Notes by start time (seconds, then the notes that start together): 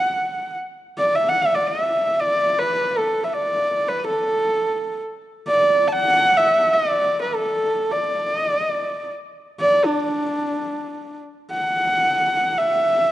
Already playing: F#5
0.98 D5
1.15 E5
1.28 F#5
1.42 E5
1.54 D5
1.66 E5
2.20 D5
2.58 B4
2.98 A4
3.24 E5
3.33 D5
3.88 B4
4.07 A4
5.47 D5
5.88 A5
5.92 F#5
6.37 E5
6.73 D5
7.22 B4
7.35 A4
7.92 D5
8.35 D#5
8.46 D5
9.60 D5
9.85 D4
11.51 F#5
12.58 E5